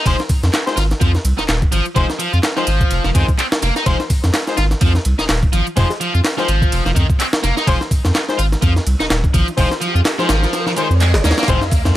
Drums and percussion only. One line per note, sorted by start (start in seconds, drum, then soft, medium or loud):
0.06 kick loud
0.06 closed hi-hat soft
0.06 ride medium
0.19 snare soft
0.19 closed hi-hat soft
0.29 kick loud
0.29 closed hi-hat medium
0.29 open hi-hat medium
0.43 snare medium
0.43 closed hi-hat soft
0.53 snare loud
0.53 clap loud
0.53 closed hi-hat soft
0.53 ride medium
0.67 snare soft
0.67 closed hi-hat soft
0.77 snare soft
0.77 closed hi-hat medium
0.77 ride medium
0.91 snare soft
0.91 closed hi-hat soft
1.01 kick loud
1.01 closed hi-hat soft
1.01 ride medium
1.14 snare soft
1.14 closed hi-hat soft
1.25 closed hi-hat medium
1.25 ride medium
1.38 snare soft
1.38 closed hi-hat soft
1.49 snare loud
1.49 clap loud
1.49 closed hi-hat soft
1.49 ride medium
1.62 kick loud
1.62 closed hi-hat soft
1.72 closed hi-hat medium
1.72 ride medium
1.85 closed hi-hat soft
1.96 kick loud
1.96 closed hi-hat soft
1.96 ride medium
2.10 snare soft
2.10 closed hi-hat soft
2.20 closed hi-hat medium
2.20 ride medium
2.33 closed hi-hat soft
2.43 snare loud
2.43 clap loud
2.43 closed hi-hat soft
2.43 ride medium
2.57 snare soft
2.57 closed hi-hat soft
2.67 closed hi-hat medium
2.67 ride medium
2.81 kick medium
2.81 closed hi-hat soft
2.91 closed hi-hat soft
2.91 ride medium
3.04 snare soft
3.04 closed hi-hat soft
3.15 kick medium
3.15 closed hi-hat medium
3.15 ride medium
3.28 kick medium
3.28 closed hi-hat soft
3.39 clap loud
3.39 closed hi-hat soft
3.39 ride medium
3.52 snare loud
3.52 closed hi-hat soft
3.62 snare soft
3.62 closed hi-hat medium
3.62 ride medium
3.76 snare soft
3.76 closed hi-hat soft
3.86 kick loud
3.86 closed hi-hat soft
3.86 ride medium
4.00 snare soft
4.00 closed hi-hat soft
4.10 kick loud
4.10 closed hi-hat medium
4.10 open hi-hat medium
4.24 snare medium
4.24 closed hi-hat soft
4.34 snare loud
4.34 clap loud
4.34 closed hi-hat soft
4.34 ride medium
4.47 snare soft
4.47 closed hi-hat soft
4.57 snare soft
4.57 closed hi-hat medium
4.57 ride medium
4.71 snare soft
4.71 closed hi-hat soft
4.81 kick loud
4.81 closed hi-hat soft
4.81 ride medium
4.95 snare soft
4.95 closed hi-hat soft
5.05 closed hi-hat medium
5.05 ride medium
5.19 snare soft
5.19 closed hi-hat soft
5.29 snare loud
5.29 clap loud
5.29 closed hi-hat soft
5.29 ride medium
5.43 kick medium
5.43 closed hi-hat soft
5.53 closed hi-hat medium
5.53 ride medium
5.67 closed hi-hat soft
5.77 kick loud
5.77 closed hi-hat soft
5.77 ride medium
5.90 snare soft
5.90 closed hi-hat soft
6.01 closed hi-hat medium
6.01 ride medium
6.15 closed hi-hat soft
6.25 snare loud
6.25 clap loud
6.25 closed hi-hat soft
6.25 ride medium
6.38 snare soft
6.38 closed hi-hat soft
6.48 closed hi-hat medium
6.48 ride medium
6.62 kick medium
6.62 closed hi-hat soft
6.72 closed hi-hat soft
6.72 ride medium
6.86 snare soft
6.86 closed hi-hat soft
6.96 kick medium
6.96 closed hi-hat medium
6.96 ride medium
7.10 kick loud
7.10 closed hi-hat soft
7.20 clap loud
7.20 closed hi-hat soft
7.20 ride medium
7.33 snare loud
7.33 closed hi-hat soft
7.44 snare soft
7.44 closed hi-hat medium
7.44 ride medium
7.57 snare soft
7.57 closed hi-hat soft
7.67 kick loud
7.67 closed hi-hat soft
7.67 ride medium
7.81 snare soft
7.81 closed hi-hat soft
7.91 kick loud
7.91 closed hi-hat medium
7.91 open hi-hat medium
8.05 snare medium
8.05 closed hi-hat soft
8.15 snare loud
8.15 clap loud
8.15 closed hi-hat soft
8.15 ride medium
8.29 snare soft
8.29 closed hi-hat soft
8.39 closed hi-hat medium
8.39 ride medium
8.52 snare soft
8.52 closed hi-hat soft
8.62 kick loud
8.62 closed hi-hat soft
8.62 ride medium
8.76 snare soft
8.76 closed hi-hat soft
8.87 closed hi-hat medium
8.87 ride medium
9.00 snare soft
9.00 closed hi-hat soft
9.10 snare loud
9.10 clap loud
9.10 closed hi-hat soft
9.10 ride medium
9.24 kick loud
9.24 closed hi-hat soft
9.34 kick medium
9.34 closed hi-hat medium
9.34 ride medium
9.48 closed hi-hat soft
9.58 kick medium
9.58 closed hi-hat soft
9.58 open hi-hat medium
9.71 snare soft
9.71 closed hi-hat soft
9.81 closed hi-hat medium
9.81 ride medium
9.96 closed hi-hat soft
10.05 snare loud
10.05 clap loud
10.05 closed hi-hat soft
10.05 ride medium
10.19 snare soft
10.19 closed hi-hat soft
10.29 snare loud
10.29 closed hi-hat medium
10.29 ride medium
10.43 snare soft
10.43 closed hi-hat soft
10.53 snare soft
10.53 closed hi-hat soft
10.53 ride medium
10.66 snare soft
10.66 closed hi-hat soft
10.76 closed hi-hat medium
10.76 ride medium
10.91 closed hi-hat soft
11.00 clap loud
11.00 closed hi-hat soft
11.00 ride medium
11.14 snare loud
11.14 closed hi-hat soft
11.24 snare medium
11.24 closed hi-hat medium
11.24 ride medium
11.31 snare medium
11.31 ride medium
11.38 snare medium
11.38 closed hi-hat soft
11.38 ride medium
11.43 snare medium
11.43 ride medium
11.48 kick loud
11.48 closed hi-hat soft
11.48 ride medium
11.62 snare soft
11.62 closed hi-hat soft
11.71 kick medium
11.71 closed hi-hat medium
11.71 open hi-hat medium
11.85 snare medium
11.85 closed hi-hat soft